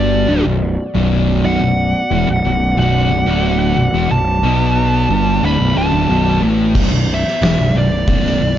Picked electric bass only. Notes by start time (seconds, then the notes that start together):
Already playing: G1
0.29 D1
0.45 B0
0.95 B0
1.44 B0
1.61 B0
2.11 E1
2.28 B0
2.44 B0
2.77 B0
3.10 B0
3.26 D1
3.76 B0
3.93 E1
4.10 B0
4.43 B1
5.09 G1
5.43 D1
5.60 B0
5.76 C#1
5.92 D1
6.09 B0
6.42 A1
6.75 B0
6.92 B0
7.41 E1
7.58 B0
7.75 B0
8.07 B0
8.41 B0